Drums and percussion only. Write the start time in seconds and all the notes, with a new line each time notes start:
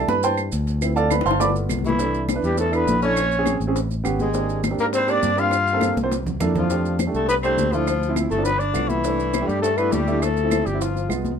0.08 high conga, maracas
0.23 cowbell, high conga, maracas
0.37 high conga, claves, maracas
0.52 cowbell, high conga, maracas
0.67 cowbell, maracas
0.82 cowbell, high conga, claves, maracas
0.97 high conga, maracas
1.11 cowbell, high bongo, high conga, claves, maracas
1.21 high bongo
1.26 cowbell, high conga, maracas
1.31 high bongo
1.41 cowbell, low bongo, maracas
1.50 low bongo
1.55 high conga, maracas
1.69 cowbell, low bongo, high conga, claves, maracas
1.79 low bongo
1.84 high conga, maracas
1.89 low bongo
1.99 high bongo, high conga, maracas
2.15 high bongo, high conga, maracas
2.29 high bongo, high conga, claves, maracas
2.44 high conga, maracas
2.58 high bongo, high conga, maracas
2.73 high bongo, high conga, claves, maracas
2.87 high bongo, low bongo, high conga, maracas
3.02 high bongo, maracas
3.16 high bongo, high conga, claves, maracas
3.32 high bongo, high conga, maracas
3.46 high bongo, high conga, claves, maracas
3.61 high conga, maracas
3.76 high bongo, high conga, maracas
3.91 high bongo, high conga, maracas
4.05 high bongo, low bongo, high conga, claves, maracas
4.19 high bongo, high conga, maracas
4.34 high bongo, high conga, maracas
4.49 high bongo, high conga, maracas
4.64 high bongo, high conga, claves, maracas
4.79 high conga, maracas
4.93 high bongo, high conga, maracas
5.08 high bongo, high conga, claves, maracas
5.23 high bongo, low bongo, high conga, maracas
5.37 high bongo, maracas
5.51 high bongo, high conga, claves, maracas
5.67 high bongo, high conga, maracas
5.81 high bongo, high conga, claves, maracas
5.97 high conga, maracas
6.12 high bongo, high conga, maracas
6.26 high bongo, low conga, maracas
6.40 high bongo, low bongo, low conga, claves, maracas
6.55 low conga, maracas
6.70 high bongo, high conga, maracas
6.85 high bongo, high conga, maracas
6.99 high bongo, high conga, claves, maracas
7.14 high conga, maracas
7.28 high bongo, high conga, maracas
7.43 high bongo, high conga, claves, maracas
7.58 high bongo, low bongo, high conga, maracas
7.72 high bongo, high conga, maracas
7.87 high bongo, high conga, claves, maracas
8.02 high bongo, high conga, maracas
8.16 high bongo, high conga, claves, maracas
8.31 high conga, maracas
8.45 high bongo, high conga, maracas
8.60 high bongo, high conga, maracas
8.75 high bongo, low bongo, high conga, claves, maracas
8.90 high bongo, high conga, maracas
9.04 high bongo, high conga, maracas
9.19 high bongo, maracas
9.34 high bongo, high conga, claves, maracas
9.49 high conga, maracas
9.63 high bongo, high conga, maracas
9.78 high bongo, high conga, claves, maracas
9.92 high bongo, low bongo, high conga, maracas
10.08 high bongo, high conga, maracas
10.22 high bongo, high conga, claves, maracas
10.37 high bongo, maracas
10.51 high bongo, high conga, claves, maracas
10.66 high conga, maracas
10.81 high bongo, high conga, maracas
10.96 high bongo, high conga, maracas
11.10 high bongo, low bongo, high conga, claves, maracas
11.25 high bongo, high conga, maracas